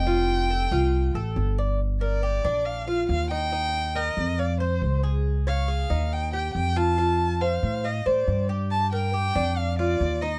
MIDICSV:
0, 0, Header, 1, 4, 480
1, 0, Start_track
1, 0, Tempo, 432277
1, 72, Time_signature, 4, 2, 24, 8
1, 11536, End_track
2, 0, Start_track
2, 0, Title_t, "Violin"
2, 0, Program_c, 0, 40
2, 0, Note_on_c, 0, 79, 109
2, 1509, Note_off_c, 0, 79, 0
2, 2229, Note_on_c, 0, 74, 97
2, 2946, Note_on_c, 0, 77, 89
2, 2963, Note_off_c, 0, 74, 0
2, 3182, Note_off_c, 0, 77, 0
2, 3188, Note_on_c, 0, 77, 91
2, 3414, Note_off_c, 0, 77, 0
2, 3441, Note_on_c, 0, 77, 102
2, 3660, Note_off_c, 0, 77, 0
2, 3671, Note_on_c, 0, 79, 112
2, 4392, Note_on_c, 0, 75, 95
2, 4409, Note_off_c, 0, 79, 0
2, 4874, Note_on_c, 0, 74, 88
2, 4891, Note_off_c, 0, 75, 0
2, 5108, Note_off_c, 0, 74, 0
2, 5115, Note_on_c, 0, 72, 80
2, 5560, Note_off_c, 0, 72, 0
2, 6082, Note_on_c, 0, 77, 99
2, 6803, Note_on_c, 0, 79, 99
2, 6820, Note_off_c, 0, 77, 0
2, 7027, Note_off_c, 0, 79, 0
2, 7034, Note_on_c, 0, 79, 90
2, 7255, Note_off_c, 0, 79, 0
2, 7261, Note_on_c, 0, 79, 100
2, 7514, Note_on_c, 0, 81, 115
2, 7531, Note_off_c, 0, 79, 0
2, 8229, Note_on_c, 0, 77, 93
2, 8246, Note_off_c, 0, 81, 0
2, 8714, Note_on_c, 0, 75, 86
2, 8731, Note_off_c, 0, 77, 0
2, 8951, Note_on_c, 0, 74, 79
2, 8968, Note_off_c, 0, 75, 0
2, 9430, Note_off_c, 0, 74, 0
2, 9674, Note_on_c, 0, 81, 113
2, 9895, Note_off_c, 0, 81, 0
2, 9914, Note_on_c, 0, 79, 111
2, 10624, Note_on_c, 0, 77, 97
2, 10641, Note_off_c, 0, 79, 0
2, 10867, Note_off_c, 0, 77, 0
2, 10871, Note_on_c, 0, 74, 97
2, 11343, Note_on_c, 0, 75, 92
2, 11359, Note_off_c, 0, 74, 0
2, 11536, Note_off_c, 0, 75, 0
2, 11536, End_track
3, 0, Start_track
3, 0, Title_t, "Cuban tres"
3, 0, Program_c, 1, 25
3, 75, Note_on_c, 1, 65, 77
3, 540, Note_off_c, 1, 65, 0
3, 557, Note_on_c, 1, 69, 71
3, 788, Note_off_c, 1, 69, 0
3, 798, Note_on_c, 1, 65, 90
3, 1261, Note_off_c, 1, 65, 0
3, 1278, Note_on_c, 1, 69, 77
3, 1741, Note_off_c, 1, 69, 0
3, 1758, Note_on_c, 1, 74, 74
3, 1988, Note_off_c, 1, 74, 0
3, 2232, Note_on_c, 1, 70, 71
3, 2465, Note_off_c, 1, 70, 0
3, 2475, Note_on_c, 1, 67, 73
3, 2707, Note_off_c, 1, 67, 0
3, 2715, Note_on_c, 1, 62, 83
3, 3179, Note_off_c, 1, 62, 0
3, 3192, Note_on_c, 1, 65, 70
3, 3658, Note_off_c, 1, 65, 0
3, 3673, Note_on_c, 1, 63, 80
3, 3898, Note_off_c, 1, 63, 0
3, 3912, Note_on_c, 1, 63, 72
3, 4377, Note_off_c, 1, 63, 0
3, 4389, Note_on_c, 1, 70, 67
3, 4856, Note_off_c, 1, 70, 0
3, 4871, Note_on_c, 1, 77, 70
3, 5104, Note_off_c, 1, 77, 0
3, 5110, Note_on_c, 1, 72, 71
3, 5576, Note_off_c, 1, 72, 0
3, 5590, Note_on_c, 1, 68, 75
3, 6056, Note_off_c, 1, 68, 0
3, 6072, Note_on_c, 1, 73, 80
3, 6304, Note_off_c, 1, 73, 0
3, 6307, Note_on_c, 1, 68, 72
3, 6541, Note_off_c, 1, 68, 0
3, 6550, Note_on_c, 1, 63, 81
3, 7016, Note_off_c, 1, 63, 0
3, 7032, Note_on_c, 1, 67, 74
3, 7497, Note_off_c, 1, 67, 0
3, 7508, Note_on_c, 1, 65, 78
3, 7736, Note_off_c, 1, 65, 0
3, 7750, Note_on_c, 1, 65, 74
3, 8215, Note_off_c, 1, 65, 0
3, 8231, Note_on_c, 1, 72, 65
3, 8696, Note_off_c, 1, 72, 0
3, 8707, Note_on_c, 1, 77, 72
3, 8941, Note_off_c, 1, 77, 0
3, 8948, Note_on_c, 1, 72, 76
3, 9414, Note_off_c, 1, 72, 0
3, 9429, Note_on_c, 1, 67, 76
3, 9895, Note_off_c, 1, 67, 0
3, 9910, Note_on_c, 1, 70, 76
3, 10139, Note_off_c, 1, 70, 0
3, 10144, Note_on_c, 1, 67, 69
3, 10380, Note_off_c, 1, 67, 0
3, 10386, Note_on_c, 1, 62, 86
3, 10854, Note_off_c, 1, 62, 0
3, 10871, Note_on_c, 1, 65, 73
3, 11336, Note_off_c, 1, 65, 0
3, 11350, Note_on_c, 1, 63, 84
3, 11536, Note_off_c, 1, 63, 0
3, 11536, End_track
4, 0, Start_track
4, 0, Title_t, "Upright bass"
4, 0, Program_c, 2, 32
4, 0, Note_on_c, 2, 29, 91
4, 722, Note_off_c, 2, 29, 0
4, 792, Note_on_c, 2, 36, 97
4, 1239, Note_off_c, 2, 36, 0
4, 1271, Note_on_c, 2, 33, 71
4, 1495, Note_off_c, 2, 33, 0
4, 1512, Note_on_c, 2, 31, 92
4, 2644, Note_off_c, 2, 31, 0
4, 2715, Note_on_c, 2, 34, 86
4, 3389, Note_off_c, 2, 34, 0
4, 3431, Note_on_c, 2, 39, 89
4, 4563, Note_off_c, 2, 39, 0
4, 4630, Note_on_c, 2, 41, 94
4, 5306, Note_off_c, 2, 41, 0
4, 5349, Note_on_c, 2, 37, 90
4, 6481, Note_off_c, 2, 37, 0
4, 6553, Note_on_c, 2, 39, 94
4, 7227, Note_off_c, 2, 39, 0
4, 7271, Note_on_c, 2, 41, 91
4, 8402, Note_off_c, 2, 41, 0
4, 8469, Note_on_c, 2, 45, 92
4, 8916, Note_off_c, 2, 45, 0
4, 8951, Note_on_c, 2, 45, 64
4, 9173, Note_off_c, 2, 45, 0
4, 9190, Note_on_c, 2, 43, 93
4, 10321, Note_off_c, 2, 43, 0
4, 10389, Note_on_c, 2, 41, 92
4, 11065, Note_off_c, 2, 41, 0
4, 11107, Note_on_c, 2, 39, 88
4, 11536, Note_off_c, 2, 39, 0
4, 11536, End_track
0, 0, End_of_file